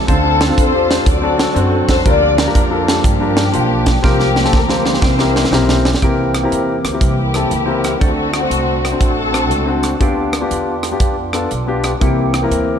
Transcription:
0.07 upright bass D2, grand piano D3 C4 D4 F4 A4, tonewheel organ C4 D4 F4 A4, string section C4 F4 A4, kick, closed hi-hat
0.41 snare, closed hi-hat
0.48 grand piano C4 D4 F4 A4
0.58 upright bass E2, string section F4 A4 C5, kick, closed hi-hat
0.73 grand piano C4 D4 F4 G4
0.91 snare, closed hi-hat
1.04 upright bass D2, grand piano D3, tonewheel organ F3 C4 D4 A4, string section F#4 A4, kick, closed hi-hat
1.09 tonewheel organ F#3, string section D5
1.22 grand piano C4 D4 F#4 A4
1.40 snare, closed hi-hat
1.54 upright bass F#2, grand piano C4 D4 F#4 C5, closed hi-hat
1.89 upright bass E2, string section C5, kick, snare, closed hi-hat
2.04 upright bass D2, grand piano D3 D4 F4 G4 A#4, tonewheel organ F3 A#3 D4 G4, string section F4 A#4 D5, kick, closed hi-hat
2.38 string section F4 G4 A#4, snare, closed hi-hat
2.46 grand piano D4 F4 G4 A#4
2.55 upright bass F2, kick, closed hi-hat
2.70 grand piano D4 F4 G4 A4
2.88 string section A4, snare, closed hi-hat
3.04 upright bass G2, string section A#3 G4, kick, closed hi-hat
3.20 grand piano D4 F4 G4 A#4
3.37 snare, closed hi-hat
3.52 upright bass B1, grand piano D4 F4 G4 C5, closed hi-hat
3.86 kick, snare, closed hi-hat
4.03 upright bass C2, grand piano C3 C4 F4 G4 A#4, tonewheel organ F3 A#3 C4 G4, string section A#3 G4, kick, snare
4.20 snare
4.36 snare
4.44 grand piano C4 F4 G4 A4, snare
4.53 upright bass D2, string section A#4, kick, snare
4.68 grand piano C4 F4 G4 C5, snare
4.86 string section E4 G4 C5, snare
4.94 snare
5.02 upright bass C2, grand piano C3, tonewheel organ E3 A#3 C4 G4, kick, snare
5.19 grand piano C4 E4 G4 A#4, snare
5.36 snare
5.44 snare
5.51 upright bass B1, grand piano C4 E4 G4 A#4, snare
5.69 snare
5.85 snare
5.94 snare
6.02 upright bass C2, grand piano C3 C4 E4 G4 A#4, tonewheel organ E3 A#3 C4 G4, kick, closed hi-hat
6.34 cross-stick, closed hi-hat
6.43 grand piano C4 E4 G4 A#4
6.51 upright bass E2, closed hi-hat
6.84 upright bass D2, cross-stick, closed hi-hat
6.93 grand piano C4 E4 G4 A#4
7.01 upright bass C2, string section A#3 E4 G4, kick, closed hi-hat
7.34 grand piano C4 E4 G4 A4, cross-stick, closed hi-hat
7.51 upright bass C#2, closed hi-hat
7.66 grand piano C4 E4 G4 A#4
7.84 cross-stick, closed hi-hat
7.99 upright bass D2, grand piano D3 C4 D4 F#4 A4, string section A3 C4 F#4, tonewheel organ A3 C4 D4 F#4, kick, closed hi-hat
8.33 cross-stick, closed hi-hat
8.40 grand piano C4 D4 F#4 C5
8.50 upright bass C2, closed hi-hat
8.85 cross-stick, closed hi-hat
8.92 grand piano C4 D4 F#4 C5
9.01 upright bass A1, string section C4 F#4 A4, kick, closed hi-hat
9.32 grand piano C4 D4 F#4 A4, cross-stick, closed hi-hat
9.50 upright bass C#2, closed hi-hat
9.66 grand piano C4 D4 F#4 C5
9.83 cross-stick, closed hi-hat
10.00 upright bass D2, grand piano D3 B3 D4 F4 G4, tonewheel organ A3 D4 F4 G4, kick, closed hi-hat
10.09 tonewheel organ B3
10.33 cross-stick, closed hi-hat
10.41 grand piano B3 D4 F4 G4
10.51 upright bass E2, closed hi-hat
10.83 cross-stick, closed hi-hat
10.91 grand piano B3 D4 F4 G4
11.00 upright bass F2, kick, closed hi-hat
11.33 grand piano B3 D4 F4 A4, cross-stick, closed hi-hat
11.51 upright bass B1, closed hi-hat
11.67 grand piano B3 D4 F4 G4
11.84 cross-stick, closed hi-hat
12.00 upright bass C2, grand piano C3 A#3 C4 E4 G4, tonewheel organ E3 A#3 C4 F#4, kick, closed hi-hat
12.07 tonewheel organ G4
12.34 cross-stick, closed hi-hat
12.42 grand piano A#3 C4 E4 A#4
12.51 upright bass D2, closed hi-hat

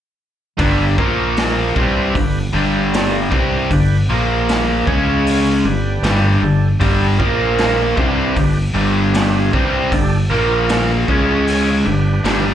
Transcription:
0.58 fingered electric bass G1, overdriven electric guitar G2 D3 G3, tonewheel organ D4 G4 B4, kick, open hi-hat
0.98 fingered electric bass A#1, overdriven electric guitar A#2 F3 A#3, tonewheel organ A#3 F4 A#4, kick
1.37 snare, open hi-hat
1.76 fingered electric bass C2, overdriven electric guitar C3 G3 C4, tonewheel organ D4 G4 B4, kick
2.15 fingered electric bass G1, overdriven electric guitar G2 D3, kick, open hi-hat
2.53 fingered electric bass G1, overdriven electric guitar G2 D3 G3, tonewheel organ D4 G4 B4
2.94 tonewheel organ D4 G4 D5, snare, open hi-hat
3.31 fingered electric bass C2, overdriven electric guitar C3 G3 C4, tonewheel organ D4 G4 B4, kick
3.70 fingered electric bass G1, overdriven electric guitar G2 D3, tonewheel organ D4 G4 B4, kick, open hi-hat
4.09 fingered electric bass A#1, overdriven electric guitar A#2 F3 A#3, tonewheel organ A#3 F4 A#4
4.49 snare, open hi-hat
4.86 fingered electric bass C#2, overdriven electric guitar C#3 G#3 C#4, tonewheel organ C#4 G#4 C#5, kick
5.27 open hi-hat
5.64 fingered electric bass G1, overdriven electric guitar G2 D3, tonewheel organ D4 G4 B4
6.02 fingered electric bass G1, overdriven electric guitar G2 D3 G3, snare, open hi-hat
6.40 fingered electric bass G1, overdriven electric guitar G2 D3, tonewheel organ D4 G4 A4
6.79 fingered electric bass G1, overdriven electric guitar G2 D3 G3, tonewheel organ D4 G4 A4, kick, open hi-hat
7.18 fingered electric bass A#1, overdriven electric guitar A#2 F3 A#3, tonewheel organ A#3 F4 A#4, kick
7.58 snare, open hi-hat
7.95 fingered electric bass C2, overdriven electric guitar C3 G3 C4, tonewheel organ D4 G4 B4, kick
8.36 fingered electric bass G1, overdriven electric guitar G2 D3, kick, open hi-hat
8.74 fingered electric bass G1, overdriven electric guitar G2 D3 G3, tonewheel organ D4 G4 B4
9.12 tonewheel organ D4 G4 B4, snare, open hi-hat
9.52 fingered electric bass C2, overdriven electric guitar C3 G3 C4, tonewheel organ D4 G4 B4, kick
9.90 fingered electric bass G1, overdriven electric guitar G2 D3, tonewheel organ D4 G4 A4, kick, open hi-hat
10.29 fingered electric bass A#1, overdriven electric guitar A#2 F3 A#3, tonewheel organ A#3 F4 A#4
10.69 snare, open hi-hat
11.07 fingered electric bass C#2, overdriven electric guitar C#3 G#3 C#4, tonewheel organ C#4 G#4 C#5, kick
11.47 open hi-hat
11.84 fingered electric bass G1, overdriven electric guitar G2 D3, tonewheel organ D4 G4 B4
12.24 fingered electric bass G1, overdriven electric guitar G2 D3 G3, snare, open hi-hat

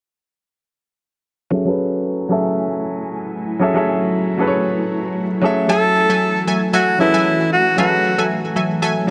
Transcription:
1.50 grand piano F#3 C#4 G#4 A4 E5, ambient pad F#3 A3 E4 G#5
1.65 grand piano F#3 C#4 G#4 A4 B4
2.29 grand piano F#3 C#4 G#4 A4 E5
3.59 grand piano F#3 C#4 G#4 A4 E5, ambient pad F#4
3.74 grand piano F#3 C#4 G#4 A4 E5
4.37 grand piano F#3 C#4 G#4 A4 B4
4.47 grand piano C#5
5.41 grand piano F#3 C#4 G#4 A4 E5
5.68 ambient pad E3 F#3 A3 F#4, grand piano F#3 C#4 A4 E5 G#5, synth pluck F#3 A4 E5 G#5, alto saxophone A4
6.09 synth pluck F#3 A4 E5 G#5
6.47 synth pluck F#3 A4 E5 G#5
6.73 synth pluck F#3 A4 E5 G#5, alto saxophone F#4
6.98 grand piano F#3 C#4 G#4 A4 B4, alto saxophone E4
7.14 synth pluck F#3 A4 E5 G#5
7.52 alto saxophone F#4
7.77 grand piano F#3 C#4 G#4 A4 B4, synth pluck F#3 A4 E5 G#5, alto saxophone F#4, ambient pad G#5
8.18 synth pluck F#3 A4 E5 G#5
8.56 synth pluck F#3 A4 E5 G#5
8.82 synth pluck F#3 A4 E5 G#5
9.07 grand piano F#3

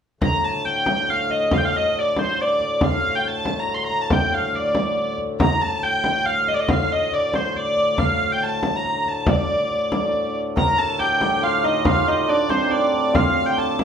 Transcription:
0.21 harmonium D2 A2, hurdy-gurdy A#5, frame drum
0.44 hurdy-gurdy A5
0.65 hurdy-gurdy G5, frame drum
0.86 frame drum
1.09 hurdy-gurdy F5, frame drum
1.30 hurdy-gurdy D#5, frame drum
1.51 hurdy-gurdy F5, frame drum
1.58 hurdy-gurdy G5
1.65 hurdy-gurdy F5
1.76 hurdy-gurdy D#5
1.95 hurdy-gurdy D5, frame drum
2.16 hurdy-gurdy C5, frame drum
2.38 hurdy-gurdy D5, frame drum
2.60 frame drum
2.81 hurdy-gurdy F5, frame drum
3.15 hurdy-gurdy G5
3.24 hurdy-gurdy A5, frame drum
3.45 frame drum
3.59 hurdy-gurdy A#5
3.68 hurdy-gurdy A#5, frame drum
3.74 hurdy-gurdy C6
3.84 hurdy-gurdy A#5
3.89 frame drum
4.01 hurdy-gurdy A5
4.10 hurdy-gurdy G5, frame drum
4.32 hurdy-gurdy F5, frame drum
4.54 hurdy-gurdy D5, frame drum
4.75 frame drum
5.18 frame drum
5.40 harmonium D2 A2, hurdy-gurdy A#5, frame drum
5.61 hurdy-gurdy A5
5.83 hurdy-gurdy G5, frame drum
6.04 frame drum
6.26 hurdy-gurdy F5, frame drum
6.47 hurdy-gurdy D#5, frame drum
6.54 hurdy-gurdy D5
6.59 hurdy-gurdy D#5
6.68 hurdy-gurdy F5, frame drum
6.92 hurdy-gurdy D#5
7.12 hurdy-gurdy D5, frame drum
7.34 hurdy-gurdy C5, frame drum
7.55 hurdy-gurdy D5, frame drum
7.77 frame drum
7.98 hurdy-gurdy F5, frame drum
8.32 hurdy-gurdy G5
8.42 hurdy-gurdy A5, frame drum
8.63 frame drum
8.76 hurdy-gurdy A#5
8.84 hurdy-gurdy A#5, frame drum
9.06 hurdy-gurdy A5, frame drum
9.26 hurdy-gurdy D5, frame drum
9.49 frame drum
9.71 frame drum
9.92 frame drum
10.14 frame drum
10.56 harmonium D2 A2, hammered dulcimer A#4, hurdy-gurdy A#5, frame drum
10.78 hammered dulcimer A4, hurdy-gurdy A5
10.99 hammered dulcimer G4, hurdy-gurdy G5, frame drum
11.21 hammered dulcimer G4, frame drum
11.43 hammered dulcimer F4, hurdy-gurdy F5, frame drum
11.63 hammered dulcimer D#4, hurdy-gurdy D#5, frame drum
11.85 hammered dulcimer F4, hurdy-gurdy F5, frame drum
12.07 hammered dulcimer D#4, hurdy-gurdy D#5
12.28 hammered dulcimer D4, hurdy-gurdy D5, frame drum
12.49 hammered dulcimer C4, hurdy-gurdy C5, frame drum
12.64 hammered dulcimer D#4
12.71 hammered dulcimer D4, hurdy-gurdy D5, frame drum
12.93 frame drum
13.13 hammered dulcimer F4, hurdy-gurdy F5, frame drum
13.46 hurdy-gurdy G5
13.57 hammered dulcimer A4, hurdy-gurdy A5, frame drum
13.79 frame drum

